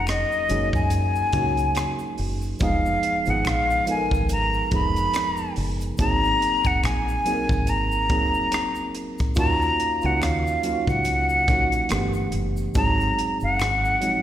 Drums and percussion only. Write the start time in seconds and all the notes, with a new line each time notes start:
0.07 finger snap, cross-stick, closed hi-hat, shaker
0.32 shaker
0.49 closed hi-hat, shaker
0.73 kick, shaker
0.90 closed hi-hat, shaker
1.15 shaker
1.32 kick, closed hi-hat
1.57 closed hi-hat, shaker
1.75 finger snap, cross-stick, closed hi-hat, shaker
1.99 shaker
2.18 open hi-hat
2.42 shaker
2.59 kick, closed hi-hat, shaker
2.86 shaker
3.03 closed hi-hat
3.25 closed hi-hat, shaker
3.45 finger snap, cross-stick, closed hi-hat, shaker
3.70 shaker
3.87 closed hi-hat, shaker
4.11 kick, shaker
4.29 closed hi-hat, shaker
4.54 shaker
4.71 kick, closed hi-hat
4.96 closed hi-hat, shaker
5.13 finger snap, cross-stick, closed hi-hat, shaker
5.37 shaker
5.56 open hi-hat
5.81 closed hi-hat, shaker
5.98 kick, closed hi-hat, shaker
6.24 shaker
6.42 closed hi-hat
6.64 kick, closed hi-hat, shaker
6.84 finger snap, cross-stick, closed hi-hat, shaker
7.08 shaker
7.26 closed hi-hat, shaker
7.49 kick, shaker
7.67 closed hi-hat, shaker
7.92 shaker
8.09 kick, closed hi-hat
8.34 shaker
8.52 finger snap, cross-stick, closed hi-hat, shaker
8.75 shaker
8.95 closed hi-hat
9.18 kick, closed hi-hat, shaker
9.35 kick, closed hi-hat, shaker
9.62 shaker
9.80 closed hi-hat
10.01 closed hi-hat, shaker
10.22 finger snap, cross-stick, closed hi-hat, shaker
10.47 shaker
10.63 closed hi-hat, shaker
10.87 kick, shaker
11.05 closed hi-hat, shaker
11.29 shaker
11.48 kick, closed hi-hat
11.72 closed hi-hat, shaker
11.89 finger snap, cross-stick, closed hi-hat, shaker
12.13 shaker
12.32 closed hi-hat
12.57 shaker
12.74 kick, closed hi-hat, shaker
13.01 shaker
13.19 closed hi-hat
13.40 shaker
13.60 finger snap, cross-stick, closed hi-hat, shaker
13.85 shaker
14.02 closed hi-hat, shaker